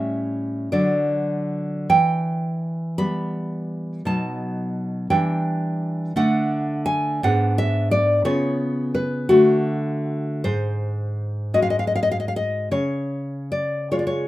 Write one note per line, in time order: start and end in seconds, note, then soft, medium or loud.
0.00 0.69 A2 medium
0.00 0.68 G3 soft
0.00 0.68 C#4 soft
0.00 0.68 E5 medium
0.72 1.87 D3 medium
0.72 1.87 F#3 soft
0.72 1.87 D4 soft
0.72 1.86 D5 medium
1.90 4.01 E3 medium
1.90 2.94 G5 medium
2.98 4.01 G3 soft
2.98 4.02 B3 medium
2.98 4.01 B5 medium
4.05 5.07 B2 medium
4.05 5.06 F#3 soft
4.05 5.06 D#4 soft
4.05 5.06 A5 medium
5.10 6.13 E3 medium
5.10 6.12 G3 medium
5.10 6.12 D4 medium
5.10 5.44 G5 medium
6.16 7.20 D3 medium
6.16 7.19 A3 soft
6.16 7.19 D4 medium
6.16 6.84 F#5 loud
6.86 7.20 G#5 loud
7.23 8.23 G#2 medium
7.23 8.23 B3 medium
7.23 8.22 D4 medium
7.23 7.56 F#5 loud
7.58 7.91 E5 loud
7.91 8.25 D5 loud
8.25 9.27 C#3 medium
8.25 9.27 B3 medium
8.25 9.27 F4 medium
8.25 8.92 C#5 loud
8.95 9.29 B4 medium
9.29 10.42 D3 medium
9.29 10.41 A3 medium
9.29 10.41 F#4 loud
10.44 12.68 G#2 medium
10.44 11.51 C5 medium
11.54 12.68 G#3 medium
11.54 12.68 F#4 medium
11.54 11.62 D#5 medium
11.62 11.70 F5 medium
11.70 11.79 D#5 medium
11.79 11.87 F5 medium
11.87 11.95 D#5 medium
11.96 12.02 F5 medium
12.03 12.11 D#5 medium
12.11 12.19 F5 medium
12.20 12.28 D#5 medium
12.28 12.36 F5 medium
12.36 12.70 D#5 medium
12.71 14.28 C#3 medium
12.71 13.49 C#5 medium
13.52 13.90 D5 medium
13.91 14.28 G#3 soft
13.91 14.28 F4 medium
13.91 13.98 C#5 medium
13.99 14.06 D5 medium
14.07 14.28 C#5 medium